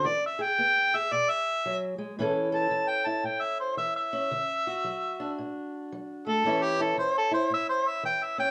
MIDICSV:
0, 0, Header, 1, 3, 480
1, 0, Start_track
1, 0, Key_signature, 3, "major"
1, 0, Tempo, 533333
1, 36, Time_signature, 4, 2, 24, 8
1, 7657, End_track
2, 0, Start_track
2, 0, Title_t, "Harmonica"
2, 0, Program_c, 0, 22
2, 59, Note_on_c, 0, 74, 105
2, 203, Note_off_c, 0, 74, 0
2, 235, Note_on_c, 0, 76, 92
2, 383, Note_on_c, 0, 79, 120
2, 396, Note_off_c, 0, 76, 0
2, 863, Note_on_c, 0, 76, 106
2, 876, Note_off_c, 0, 79, 0
2, 1015, Note_on_c, 0, 74, 115
2, 1029, Note_off_c, 0, 76, 0
2, 1164, Note_on_c, 0, 76, 108
2, 1177, Note_off_c, 0, 74, 0
2, 1625, Note_off_c, 0, 76, 0
2, 2290, Note_on_c, 0, 81, 91
2, 2598, Note_on_c, 0, 79, 97
2, 2612, Note_off_c, 0, 81, 0
2, 2763, Note_on_c, 0, 81, 80
2, 2777, Note_off_c, 0, 79, 0
2, 2927, Note_on_c, 0, 79, 89
2, 2941, Note_off_c, 0, 81, 0
2, 3075, Note_on_c, 0, 76, 89
2, 3089, Note_off_c, 0, 79, 0
2, 3231, Note_off_c, 0, 76, 0
2, 3243, Note_on_c, 0, 72, 86
2, 3395, Note_off_c, 0, 72, 0
2, 3402, Note_on_c, 0, 76, 90
2, 3554, Note_off_c, 0, 76, 0
2, 3569, Note_on_c, 0, 76, 89
2, 4967, Note_off_c, 0, 76, 0
2, 5648, Note_on_c, 0, 69, 103
2, 5964, Note_on_c, 0, 67, 94
2, 5978, Note_off_c, 0, 69, 0
2, 6134, Note_on_c, 0, 69, 92
2, 6148, Note_off_c, 0, 67, 0
2, 6281, Note_off_c, 0, 69, 0
2, 6288, Note_on_c, 0, 72, 83
2, 6438, Note_off_c, 0, 72, 0
2, 6462, Note_on_c, 0, 69, 101
2, 6599, Note_off_c, 0, 69, 0
2, 6604, Note_on_c, 0, 72, 80
2, 6756, Note_off_c, 0, 72, 0
2, 6784, Note_on_c, 0, 76, 91
2, 6920, Note_off_c, 0, 76, 0
2, 6925, Note_on_c, 0, 72, 89
2, 7096, Note_on_c, 0, 76, 88
2, 7110, Note_off_c, 0, 72, 0
2, 7242, Note_off_c, 0, 76, 0
2, 7247, Note_on_c, 0, 79, 77
2, 7415, Note_on_c, 0, 76, 77
2, 7428, Note_off_c, 0, 79, 0
2, 7551, Note_off_c, 0, 76, 0
2, 7556, Note_on_c, 0, 79, 87
2, 7657, Note_off_c, 0, 79, 0
2, 7657, End_track
3, 0, Start_track
3, 0, Title_t, "Steel-string acoustic guitar"
3, 0, Program_c, 1, 25
3, 41, Note_on_c, 1, 52, 83
3, 349, Note_on_c, 1, 68, 66
3, 484, Note_off_c, 1, 52, 0
3, 526, Note_on_c, 1, 59, 72
3, 826, Note_off_c, 1, 68, 0
3, 847, Note_on_c, 1, 68, 67
3, 967, Note_off_c, 1, 59, 0
3, 1003, Note_on_c, 1, 47, 66
3, 1445, Note_off_c, 1, 47, 0
3, 1490, Note_on_c, 1, 54, 70
3, 1782, Note_off_c, 1, 54, 0
3, 1785, Note_on_c, 1, 56, 67
3, 1947, Note_off_c, 1, 68, 0
3, 1956, Note_off_c, 1, 56, 0
3, 1968, Note_on_c, 1, 45, 79
3, 1973, Note_on_c, 1, 52, 68
3, 1980, Note_on_c, 1, 61, 66
3, 1984, Note_on_c, 1, 64, 66
3, 1995, Note_on_c, 1, 69, 73
3, 2267, Note_off_c, 1, 69, 0
3, 2270, Note_on_c, 1, 69, 62
3, 2407, Note_off_c, 1, 45, 0
3, 2427, Note_off_c, 1, 52, 0
3, 2438, Note_on_c, 1, 52, 66
3, 2746, Note_off_c, 1, 64, 0
3, 2757, Note_on_c, 1, 64, 60
3, 2883, Note_off_c, 1, 52, 0
3, 2911, Note_on_c, 1, 45, 51
3, 3359, Note_off_c, 1, 45, 0
3, 3394, Note_on_c, 1, 52, 60
3, 3704, Note_off_c, 1, 61, 0
3, 3715, Note_on_c, 1, 61, 60
3, 3841, Note_off_c, 1, 52, 0
3, 3861, Note_off_c, 1, 61, 0
3, 3862, Note_off_c, 1, 64, 0
3, 3881, Note_on_c, 1, 50, 77
3, 4199, Note_off_c, 1, 69, 0
3, 4203, Note_on_c, 1, 66, 56
3, 4325, Note_off_c, 1, 50, 0
3, 4359, Note_on_c, 1, 54, 64
3, 4678, Note_on_c, 1, 62, 58
3, 4803, Note_off_c, 1, 54, 0
3, 4847, Note_on_c, 1, 45, 61
3, 5287, Note_off_c, 1, 45, 0
3, 5332, Note_on_c, 1, 54, 70
3, 5638, Note_on_c, 1, 57, 58
3, 5770, Note_off_c, 1, 54, 0
3, 5783, Note_off_c, 1, 62, 0
3, 5797, Note_on_c, 1, 45, 73
3, 5806, Note_off_c, 1, 66, 0
3, 5810, Note_off_c, 1, 57, 0
3, 5811, Note_on_c, 1, 52, 65
3, 5814, Note_on_c, 1, 61, 69
3, 5819, Note_on_c, 1, 64, 67
3, 6112, Note_off_c, 1, 64, 0
3, 6116, Note_on_c, 1, 64, 58
3, 6243, Note_off_c, 1, 45, 0
3, 6273, Note_off_c, 1, 52, 0
3, 6277, Note_on_c, 1, 52, 62
3, 6578, Note_off_c, 1, 64, 0
3, 6582, Note_on_c, 1, 64, 63
3, 6722, Note_off_c, 1, 52, 0
3, 6747, Note_on_c, 1, 45, 56
3, 7198, Note_off_c, 1, 45, 0
3, 7230, Note_on_c, 1, 52, 68
3, 7532, Note_off_c, 1, 61, 0
3, 7543, Note_on_c, 1, 61, 60
3, 7657, Note_off_c, 1, 52, 0
3, 7657, Note_off_c, 1, 61, 0
3, 7657, Note_off_c, 1, 64, 0
3, 7657, End_track
0, 0, End_of_file